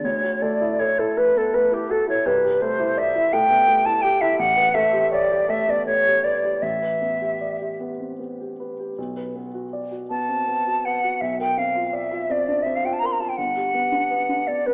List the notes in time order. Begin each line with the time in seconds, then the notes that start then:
0.04 D2 C#5
0.23 F#4
0.42 A3 D5
0.61 E4
0.79 A4 C#5
0.99 E4 A4
1.17 A3 B4
1.36 B3 A4
1.54 A3 B4
1.72 E4 G4
1.90 F#4 A4
2.07 E4 C#5
2.25 C2 B4
2.44 G4
2.61 A3 C5
2.80 E4
2.97 D5 E5
3.15 E4
3.33 A3 G5
3.50 B3
3.68 A3
3.85 E4 A5
4.02 G4 G5
4.21 E4 E5
4.38 A1 F#5
4.57 B4
4.74 A3 E5
4.93 G4
5.12 C#5 D5
5.31 G4
5.49 A3 E5
5.68 B3 D5
5.86 A3 C#5
6.06 G4
6.24 B4 D5
6.43 G4
6.62 A1 E5
6.82 B4
7.02 B3
7.21 G4
7.41 D5
7.61 G4
7.80 B3
8.00 C4
8.20 B3
8.40 G4
8.60 B4
8.79 G4
8.98 B1
9.17 B4
9.36 B3
9.54 F#4
9.73 D5
9.91 F#4
10.10 B3 A5
10.29 C4
10.48 B3
10.67 F#4
10.85 B4 F#5
11.04 F#4
11.21 B1 E5
11.40 A#4 G5
11.58 C4 F5
11.76 F4
11.93 D5 E5
12.11 F4
12.30 C4 D5
12.49 D4
12.62 E5
12.66 C4
12.75 F5
12.85 F4 G5
12.93 A5
12.99 A#4 A#5
13.05 C6
13.12 A#5
13.20 F4 A5
13.29 G5
13.37 G1 F#5
13.56 G4
13.74 B3
13.92 D4
14.11 B4
14.29 D4
14.47 B3 D5
14.66 C4 B4